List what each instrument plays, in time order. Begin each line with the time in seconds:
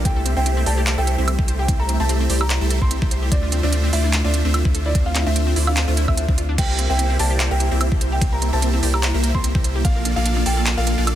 0.05 sub bass C2, ambient pad C3 G3 E4, supersaw synth A3 E4 G4 C5 E5, synth arpeggio sound C4, grand piano G5, kick, closed hi-hat
0.16 synth arpeggio sound A4
0.26 synth arpeggio sound C4, closed hi-hat
0.37 sub bass C2, supersaw synth A3 E4 G4 C5 E5, synth arpeggio sound C4, grand piano G5
0.46 synth arpeggio sound C4, closed hi-hat
0.57 synth arpeggio sound C4
0.66 sub bass C2, supersaw synth A3 E4 G4 C5 D5, synth arpeggio sound G4, grand piano A5, open hi-hat
0.77 synth arpeggio sound G4
0.87 synth arpeggio sound C5, clap, closed hi-hat
0.98 sub bass C2, supersaw synth A3 E4 G4 C5 E5, synth arpeggio sound A4, grand piano G5
1.07 synth arpeggio sound A4, closed hi-hat
1.18 sub bass C2, supersaw synth A3 E4 G4 C5 E5, synth arpeggio sound C4
1.28 synth arpeggio sound C4, closed hi-hat, high woodblock
1.39 sub bass C2, supersaw synth A3 E4 G4 C5 E5, synth arpeggio sound G4, kick
1.48 synth arpeggio sound C5, closed hi-hat
1.59 synth arpeggio sound G4, grand piano G5
1.68 sub bass C2, supersaw synth A3 E4 G4 C5 E5, synth arpeggio sound C4, kick, closed hi-hat
1.80 synth arpeggio sound A4, grand piano A#5
1.89 synth arpeggio sound C4, closed hi-hat
2.00 sub bass C2, supersaw synth A3 E4 G4 C5 E5, synth arpeggio sound C4, grand piano A5
2.09 synth arpeggio sound C4, closed hi-hat
2.20 synth arpeggio sound C4
2.30 sub bass C2, supersaw synth A3 E4 G4 C5 D5, synth arpeggio sound G4, open hi-hat
2.41 synth arpeggio sound G4, grand piano A#5, high woodblock
2.50 synth arpeggio sound C5, clap, closed hi-hat
2.61 sub bass C2, supersaw synth A3 E4 G4 C5 E5, synth arpeggio sound A4
2.70 synth arpeggio sound A4, closed hi-hat
2.82 sub bass C2, supersaw synth A3 E4 G4 C5 E5, synth arpeggio sound C4, grand piano C6, kick
2.91 synth arpeggio sound C4, closed hi-hat
3.02 sub bass C2, supersaw synth A3 E4 G4 C5 E5, synth arpeggio sound G4, kick
3.11 synth arpeggio sound C5, closed hi-hat
3.22 synth arpeggio sound G4
3.32 sub bass D2, ambient pad D3 C4 E4 F4, supersaw synth A3 D4 F4 C5 E5, synth arpeggio sound C4, grand piano D5, kick, closed hi-hat
3.43 synth arpeggio sound F4
3.52 synth arpeggio sound C4, closed hi-hat
3.63 sub bass D2, supersaw synth A3 D4 F4 C5 E5, synth arpeggio sound C4, grand piano D5
3.73 synth arpeggio sound C4, closed hi-hat
3.84 synth arpeggio sound C4
3.93 sub bass D2, supersaw synth A3 D4 F4 C5 D5, synth arpeggio sound E4, grand piano E5, open hi-hat
4.04 synth arpeggio sound E4
4.13 synth arpeggio sound A4, clap, closed hi-hat
4.24 sub bass D2, supersaw synth A3 D4 F4 C5 E5, synth arpeggio sound F4, grand piano D5
4.34 synth arpeggio sound F4, closed hi-hat
4.45 sub bass D2, supersaw synth A3 D4 F4 C5 E5, synth arpeggio sound C4
4.54 synth arpeggio sound C4, closed hi-hat, high woodblock
4.65 sub bass D2, supersaw synth A3 F4 C5 E5, synth arpeggio sound E4, kick
4.74 synth arpeggio sound A4, closed hi-hat
4.86 synth arpeggio sound E4, grand piano D5
4.95 sub bass D2, supersaw synth A3 D4 F4 C5 E5, synth arpeggio sound C4, kick, closed hi-hat
5.06 synth arpeggio sound F4, grand piano F5
5.15 synth arpeggio sound C4, clap, closed hi-hat
5.26 sub bass D2, supersaw synth A3 D4 F4 C5 E5, synth arpeggio sound C4, grand piano E5
5.36 synth arpeggio sound C4, closed hi-hat
5.47 synth arpeggio sound C4
5.56 sub bass D2, supersaw synth A3 D4 F4 C5 D5, synth arpeggio sound E4, open hi-hat
5.67 synth arpeggio sound E4, grand piano F5, high woodblock
5.76 synth arpeggio sound A4, clap, closed hi-hat
5.88 sub bass D2, supersaw synth A3 D4 F4 C5 E5, synth arpeggio sound F4
5.97 synth arpeggio sound E4, closed hi-hat
6.08 sub bass D2, supersaw synth A3 D4 F4, synth arpeggio sound C4, grand piano E5, kick, high woodblock
6.17 synth arpeggio sound D4, closed hi-hat
6.28 sub bass D2, supersaw synth A3 D4 F4 C5 D5, synth arpeggio sound C4, kick
6.38 synth arpeggio sound F4, closed hi-hat
6.49 synth arpeggio sound D4
6.58 sub bass C2, ambient pad C3 A#3, supersaw synth A#3 E4 G4 C5 E5, synth arpeggio sound C4, grand piano G5, kick, closed hi-hat, ride, crash
6.69 synth arpeggio sound A#4
6.79 synth arpeggio sound C4, closed hi-hat
6.90 sub bass C2, supersaw synth A#3 E4 G4 C5 E5, synth arpeggio sound C4, grand piano G5
6.99 synth arpeggio sound C4, closed hi-hat
7.10 synth arpeggio sound C4
7.19 sub bass C2, supersaw synth A#3 E4 G4 C5 D5, synth arpeggio sound G4, grand piano A5, open hi-hat
7.31 synth arpeggio sound G4
7.40 synth arpeggio sound C5, clap, closed hi-hat
7.51 sub bass C2, supersaw synth A#3 E4 G4 C5 E5, synth arpeggio sound A#4, grand piano G5
7.60 synth arpeggio sound A#4, closed hi-hat
7.71 sub bass C2, supersaw synth A#3 E4 G4 C5 E5, synth arpeggio sound C4
7.81 synth arpeggio sound C4, closed hi-hat, high woodblock
7.92 sub bass C2, supersaw synth A#3 E4 G4 C5, synth arpeggio sound G4, kick
8.01 synth arpeggio sound C5, closed hi-hat
8.12 synth arpeggio sound G4, grand piano G5
8.21 sub bass C2, supersaw synth A#3 E4 G4 C5, synth arpeggio sound C4, kick, closed hi-hat, ride
8.32 synth arpeggio sound A#4, grand piano A#5
8.42 synth arpeggio sound C4, closed hi-hat
8.53 sub bass C2, supersaw synth A#3 E4 G4 C5 E5, synth arpeggio sound C4, grand piano A5
8.62 synth arpeggio sound C4, closed hi-hat
8.73 synth arpeggio sound C4
8.83 sub bass C2, supersaw synth A#3 E4 G4 C5 D5, synth arpeggio sound G4, open hi-hat
8.94 synth arpeggio sound G4, grand piano A#5, high woodblock
9.03 synth arpeggio sound C5, clap, closed hi-hat, ride
9.14 sub bass C2, supersaw synth A#3 E4 G4 C5 E5, synth arpeggio sound A#4
9.24 synth arpeggio sound A#4, closed hi-hat
9.35 sub bass C2, synth arpeggio sound C4, supersaw synth E4 G4 E5, grand piano C6, kick
9.44 synth arpeggio sound C4, closed hi-hat
9.55 sub bass C2, supersaw synth A#3 E4 G4 C5 E5, synth arpeggio sound G4, kick
9.64 synth arpeggio sound C5, closed hi-hat
9.76 synth arpeggio sound G4
9.85 sub bass A#1, ambient pad A3 D4, supersaw synth A#3 F4 A4 D5 F5, synth arpeggio sound D4, grand piano F5, kick, closed hi-hat, ride
9.96 synth arpeggio sound A#4
10.05 synth arpeggio sound D4, closed hi-hat
10.16 sub bass A#1, supersaw synth A#3 F4 A4 D5 F5, synth arpeggio sound D4, grand piano F5
10.26 synth arpeggio sound D4, closed hi-hat
10.37 synth arpeggio sound D4
10.46 sub bass A#1, supersaw synth A#3 F4 A4 D5 F5, synth arpeggio sound A4, grand piano G5, open hi-hat
10.57 synth arpeggio sound A4
10.66 synth arpeggio sound D5, clap, closed hi-hat, ride
10.77 sub bass A#1, supersaw synth A#3 F4 A4 D5 F5, synth arpeggio sound A#4, grand piano F5
10.87 synth arpeggio sound A#4, closed hi-hat
10.98 sub bass A#1, supersaw synth A#3 F4 A4 D5 F5, synth arpeggio sound D4
11.07 synth arpeggio sound D4, closed hi-hat, high woodblock